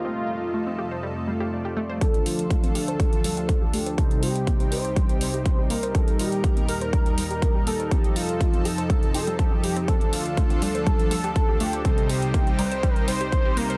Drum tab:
HH |----------------|xxoxxxoxxxoxx-ox|xxoxxxoxxxoxx-ox|xxoxxxoxxxoxx-ox|
BD |----------------|o---o---o---o---|o---o---o---o---|o---o---o---o---|

HH |xxoxxxoxxxoxx-ox|xxoxxxoxxxoxx-ox|xxoxxxoxxxoxx-ox|
BD |o---o---o---o---|o---o---o---o---|o---o---o---o---|